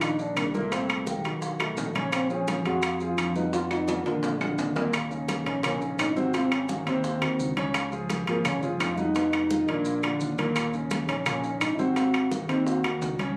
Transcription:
Already playing: A#1 D#3 D4 D#4
0.01 D#4, high bongo, high conga, high timbale, claves, maracas
0.19 D#3 D4 D#4, high bongo, high conga, maracas
0.36 C2 A#3, high bongo, low bongo, high conga, high timbale, claves, maracas
0.47 G3
0.54 A#2 A3 A#3 A#4, high bongo, high conga, maracas
0.72 A#2 C4 C5, high bongo, high timbale, maracas
0.89 high bongo, high conga, high timbale, claves, maracas
1.07 D#3 D#4 G4, high bongo, high conga, maracas
1.24 B1 D#3 D#4 F#4, high conga, high timbale, maracas
1.42 high bongo, high conga, maracas
1.59 D#3 A3 D#4 F#4, high bongo, high conga, high timbale, claves, maracas
1.77 A#1, high bongo, low bongo, high conga, low timbale, maracas
1.95 C#3 C#4 C#5, high bongo, high conga, high timbale, maracas
2.12 C4, high bongo, high timbale, claves, maracas
2.30 F3 C#4 F4 G#4, high bongo, high conga, maracas
2.48 high bongo, high conga, high timbale, maracas
2.65 F2 G#3 F#4 G#4 F5, high conga, high timbale, maracas
2.82 high bongo, high conga, high timbale, claves, maracas
3.00 F3 F4 G#4, high bongo, high conga, maracas
3.18 F2, high bongo, low bongo, high conga, high timbale, claves, maracas
3.36 B2 B3 D#4 B4, high bongo, high conga, maracas
3.53 B2 B3 F4 B4, high bongo, high conga, high timbale, maracas
3.71 D#4, high bongo, high conga, high timbale, claves, maracas
3.88 D#3 B3 D#4 F4, high bongo, high conga, high timbale, maracas
4.06 A#1 D3 A#3 D4 F4, high conga, high timbale, maracas
4.23 high bongo, high conga, low timbale, maracas
4.41 D3 D4 F4, high bongo, high conga, low timbale, claves, maracas
4.58 D#2, high bongo, low bongo, high conga, low timbale, maracas
4.75 A#2 A#3 A#4, high bongo, high conga, low timbale, maracas
4.93 high bongo, high timbale, claves, maracas
5.11 C#3 C#4 D#4, high bongo, high conga, maracas
5.28 high bongo, high conga, high timbale, maracas
5.46 A#1 C#3 C#4 D#4, high conga, high timbale, maracas
5.63 A#2 A#3 C#4 A#4, high bongo, high conga, low conga, high timbale, claves, maracas
5.81 C#3 C#4 D#4, high bongo, high conga, maracas
5.99 G#1 D#4, high bongo, low bongo, high conga, high timbale, low timbale, claves, maracas
6.16 C3 C4 F#4 C5, high bongo, high conga, maracas
6.34 C3 C4 F4 C5, high bongo, high conga, high timbale, maracas
6.45 C4
6.51 C#4, high bongo, high conga, high timbale, claves, maracas
6.69 D#3 D#4 F#4, high bongo, high conga, maracas
6.86 D#2 C3 C4 C5, high conga, high timbale, maracas
7.04 high bongo, high conga, maracas
7.22 D#2 D#3 D#4 F#4, high bongo, high conga, high timbale, claves, maracas
7.39 C#2, high bongo, low bongo, high conga, maracas
7.57 C#3 C#4 C#5, high bongo, high conga, high timbale, maracas
7.74 high bongo, high timbale, claves, maracas
7.92 F3 F4 G#4, high bongo, high conga, maracas
8.10 high bongo, high conga, high timbale, maracas
8.27 G#1 F3 A#3 F4 G#4, high conga, high timbale, maracas
8.45 C#3 C#4 C#5, high bongo, high conga, low conga, high timbale, claves, maracas
8.62 F3 F4 G#4, high bongo, high conga, low conga, maracas
8.80 F1, high bongo, low bongo, high conga, high timbale, low timbale, claves, maracas
8.98 B2 B3 D#4 B4, high bongo, high conga, maracas
9.15 B2 B3 B4, high bongo, high conga, high timbale, maracas
9.33 D#4, high bongo, high conga, high timbale, claves, maracas
9.50 D#3 D#4 F4, high bongo, high conga, maracas
9.68 A#1 A#2 A#3 D4 A#4, high conga, high timbale, maracas
9.85 high bongo, high conga, maracas
10.03 D3 D4 F4, high bongo, high conga, high timbale, claves, maracas
10.20 D#2, low bongo, high conga, maracas
10.38 A#2 A#3 A#4, low bongo, high conga, high timbale, maracas
10.56 high bongo, high conga, high timbale, claves, maracas
10.73 C#3 C#4 D#4, high bongo, high conga, maracas
10.90 high bongo, high conga, high timbale, maracas
11.08 A#1 C#3 C#4 D#4, high conga, high timbale, maracas
11.26 A#2 A#3 C#4 A#4, high bongo, high conga, low conga, high timbale, claves, maracas
11.43 C#3 C#4 D#4, high bongo, high conga, maracas
11.61 G#1 D#4, high bongo, low bongo, high conga, high timbale, claves, maracas
11.79 C3 C4 F#4 C5, high bongo, high conga, maracas
11.96 C3 C4 C5, high bongo, high conga, high timbale, maracas
12.14 high bongo, high conga, high timbale, claves, maracas
12.31 D#3 D#4 F#4, high bongo, high conga, maracas
12.49 D#2 C3 C4 D#4 C5, high conga, high timbale, maracas
12.66 F#4, high bongo, high conga, maracas
12.84 D#2 D#3 D#4 F#4, high bongo, high conga, high timbale, claves, maracas
13.01 C#2, high bongo, low bongo, high conga, low timbale, maracas
13.19 C#3 C#4 C#5, high bongo, high conga, high timbale, maracas

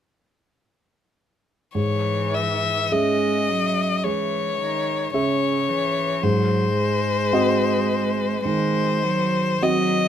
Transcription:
1.75 G#2 E3 C#5
2.34 E5
2.92 G#3 C#4 G#4 D#5 E5
3.49 F#3
4.04 E3 G#3 C#5
4.60 D#3
5.13 C#3 C#4 G#4 C#5 E5
5.69 E3
6.23 G#2 F#3 C5
6.77 G#3
7.33 C4 F#4 D#5
8.44 D#3 G#3 C5
9.04 F#3
9.62 F#3 C4 F#4 D#5

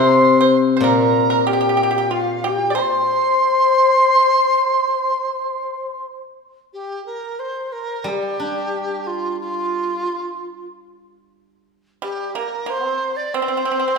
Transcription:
Already playing: C3 C5 C6
0.41 C5
0.77 A#2 C5
0.84 A#4 A#5
1.30 A#4
1.47 G4 G5
1.53 G4
1.61 G4
1.69 G4
1.77 G4
1.83 G4
1.91 G4
1.98 G4
2.10 F4 F5
2.41 G4
2.47 G5
2.70 D5
2.75 C5
2.80 C6
6.73 G4
7.05 A#4
7.39 C5
7.72 A#4
8.04 G3 G4
8.40 D4
9.06 F4
9.40 F4
12.02 G3 G4
12.35 A#3 A#4
12.66 A#3 C5
12.85 C4
13.16 D5
13.34 C4 C5
13.42 C4
13.48 C4
13.57 C4
13.65 C4
13.71 C4
13.79 C4
13.88 C4

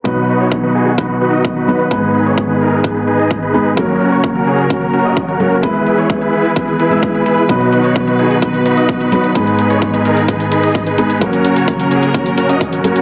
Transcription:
0.04 B2 D#3 F#3 B3 D#4 F#4 B4, kick
0.28 D#4 F#4 B4, closed hi-hat
0.40 D#4 F#4 C#5, closed hi-hat
0.52 kick
0.63 D#4 F#4 B4
0.75 D#4 F#4 G#4, closed hi-hat
0.86 closed hi-hat
0.98 D#4 F#4 B4, kick
1.21 D#4 F#4 B4, closed hi-hat
1.33 D#4 F#4 D#5, closed hi-hat
1.45 kick
1.56 D#4 F#4 B4
1.67 F#3 B3 D#4 F#4 B4, closed hi-hat
1.80 closed hi-hat
1.90 G#2 G#3 B3 D#4 G#4 B4, kick
2.14 D#4 G#4 B4, closed hi-hat
2.26 D#4 G#4 C#5, closed hi-hat
2.38 kick
2.49 D#4 G#4 B4, closed hi-hat
2.61 D#4 G#4 A#4, closed hi-hat
2.72 closed hi-hat
2.84 D#4 G#4 B4, kick
2.96 closed hi-hat
3.07 D#4 G#4 B4, closed hi-hat
3.19 D#4 G#4 D#5, closed hi-hat
3.31 kick
3.42 D#4 G#4 B4, closed hi-hat
3.53 G#3 B3 D#4 G#4 B4, closed hi-hat
3.65 closed hi-hat
3.76 C#3 F#3 A#3 C#4 F#4 A#4, kick
3.89 closed hi-hat
4.00 C#4 F#4 A#4, closed hi-hat
4.12 C#4 F#4 C#5, closed hi-hat
4.24 kick
4.35 C#4 F#4 A#4, closed hi-hat
4.47 C#4 F#4 G#4, closed hi-hat
4.59 closed hi-hat
4.70 C#4 F#4 A#4, kick
4.82 closed hi-hat
4.93 C#4 F#4 A#4, closed hi-hat
5.05 C#4 F#4 D#5, closed hi-hat
5.17 kick
5.28 C#4 F#4 A#4, closed hi-hat
5.40 F#3 A#3 C#4 F#4 A#4, closed hi-hat
5.52 closed hi-hat
5.62 E3 G#3 B3 E4 G#4 B4, kick, closed hi-hat
5.75 closed hi-hat
5.87 E4 G#4 B4, closed hi-hat
5.98 E4 G#4 C#5, closed hi-hat
6.10 kick
6.21 E4 G#4 B4, closed hi-hat
6.33 E4 G#4 B4, closed hi-hat
6.45 closed hi-hat
6.56 E4 G#4 B4, kick, closed hi-hat
6.68 closed hi-hat
6.80 E4 G#4 B4, closed hi-hat
6.90 G#3 B3 E4 G#4 B4 E5, closed hi-hat
7.03 kick, closed hi-hat
7.14 E4 G#4 B4, closed hi-hat
7.26 E4 G#4 B4, closed hi-hat
7.38 closed hi-hat
7.48 B2 D#3 F#3 B3 D#4 F#4 B4, kick, closed hi-hat
7.61 closed hi-hat
7.73 D#4 F#4 B4, closed hi-hat
7.84 D#4 F#4 C#5, closed hi-hat
7.96 kick, closed hi-hat
8.07 D#4 F#4 B4, closed hi-hat
8.19 D#4 F#4 G#4, closed hi-hat
8.31 closed hi-hat
8.42 D#4 F#4 B4, kick, closed hi-hat
8.54 closed hi-hat
8.66 D#4 F#4 B4, closed hi-hat
8.77 D#4 F#4 D#5, closed hi-hat
8.89 kick, closed hi-hat
9.01 D#4 F#4 B4, closed hi-hat
9.12 F#3 B3 D#4 F#4 B4, closed hi-hat
9.24 closed hi-hat
9.34 G#2 D#3 G#3 B3 D#4 G#4 B4, kick, closed hi-hat
9.47 closed hi-hat
9.59 D#4 G#4 B4, closed hi-hat
9.70 D#4 G#4 C#5, closed hi-hat
9.82 kick, closed hi-hat
9.94 D#4 G#4 B4, closed hi-hat
10.05 D#4 G#4 A#4, closed hi-hat
10.17 closed hi-hat
10.28 D#4 G#4 B4, kick, closed hi-hat
10.40 closed hi-hat
10.52 D#4 G#4 B4, closed hi-hat
10.63 D#4 G#4 D#5, closed hi-hat
10.75 kick, closed hi-hat
10.87 D#4 G#4 B4, closed hi-hat
10.98 G#3 B3 D#4 G#4 B4, closed hi-hat
11.10 closed hi-hat
11.20 C#3 F#3 A#3 C#4 F#4 A#4, kick, closed hi-hat
11.33 closed hi-hat
11.45 C#4 F#4 A#4, closed hi-hat
11.56 C#4 F#4 C#5, closed hi-hat
11.68 kick, closed hi-hat
11.79 C#4 F#4 A#4, closed hi-hat
11.91 C#4 F#4 G#4, closed hi-hat
12.03 closed hi-hat
12.14 C#4 F#4 A#4, kick, closed hi-hat
12.26 closed hi-hat
12.38 C#4 F#4 A#4, closed hi-hat
12.49 C#4 F#4 D#5, closed hi-hat
12.61 kick, closed hi-hat
12.73 C#4 F#4 A#4, closed hi-hat
12.84 F#3 A#3 C#4 F#4 A#4, closed hi-hat
12.96 closed hi-hat

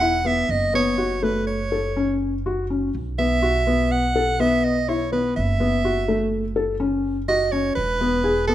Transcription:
Already playing: E1 F#5
0.01 E4
0.25 B3 E5
0.49 F#1 D#5
0.74 B3 C#5
0.98 F#4
1.23 A3 B4
1.47 C#5
1.72 A4
1.96 C#4
2.46 F#4
2.70 C#4
2.95 B1
3.19 B3 E5
3.42 F#4
3.67 B3
3.92 F#5
4.16 A4
4.40 B3 E5
4.65 D#5
4.88 E4 C#5
5.12 B3 B4
5.36 F#1 E5
5.60 B3
5.85 F#4
6.08 A3
6.56 A4
6.80 C#4
7.28 F#4 D#5
7.52 C#4 C#5
7.75 E1 B4
8.01 B3
8.24 G#4
8.48 B3 A4

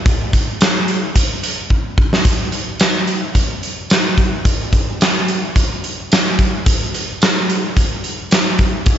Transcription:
0.06 kick, closed hi-hat
0.33 kick, closed hi-hat
0.61 snare, closed hi-hat, tambourine
0.88 closed hi-hat
1.16 kick, closed hi-hat
1.43 closed hi-hat
1.70 kick
1.98 kick
2.13 snare
2.25 kick, closed hi-hat
2.52 closed hi-hat
2.80 snare, closed hi-hat, tambourine
3.07 closed hi-hat
3.35 kick, closed hi-hat
3.63 closed hi-hat
3.90 snare, closed hi-hat, tambourine
4.17 kick, closed hi-hat
4.45 kick, closed hi-hat
4.73 kick, closed hi-hat
5.01 snare, closed hi-hat, tambourine
5.28 closed hi-hat
5.56 kick, closed hi-hat
5.84 closed hi-hat
6.12 snare, closed hi-hat, tambourine
6.39 kick, closed hi-hat
6.66 kick, closed hi-hat
6.94 closed hi-hat
7.22 snare, closed hi-hat, tambourine
7.49 closed hi-hat
7.77 kick, closed hi-hat
8.04 closed hi-hat
8.31 snare, closed hi-hat, tambourine
8.59 kick, closed hi-hat
8.86 kick, closed hi-hat

